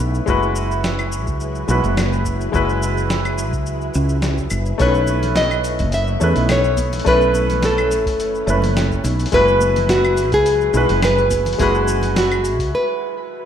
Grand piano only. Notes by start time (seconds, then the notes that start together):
Already playing: A3 C#4 E4 B4
0.26 G#3 E4 F#4 B4
1.68 G#3 E4 F#4 B4
2.52 G#3 E4 F#4 B4
4.78 A3 C#4 E4 B4
6.20 A3 C#4 E4 B4
7.05 A3 C#4 E4 B4
8.46 A3 C#4 E4 B4
9.32 G#3 E4 F#4 B4
10.74 G#3 E4 F#4 B4
11.58 G#3 E4 F#4
11.62 B4